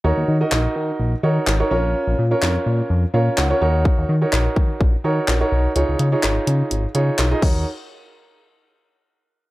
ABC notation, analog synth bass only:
X:1
M:4/4
L:1/16
Q:1/4=126
K:Ebm
V:1 name="Analog synth bass" clef=bass
E,, E,, E,2 B,,,2 E,2 B,,,2 E,2 A,,,2 B,,,2- | B,,, B,,, B,,2 F,,2 B,,2 F,,2 B,,2 D,,2 E,,2- | E,, E,, E,2 B,,,2 E,2 B,,,2 E,2 B,,,2 C,,2 | D,, D,, D,2 A,,,2 D,2 A,,,2 D,2 C,,2 E,,2 |
z16 |]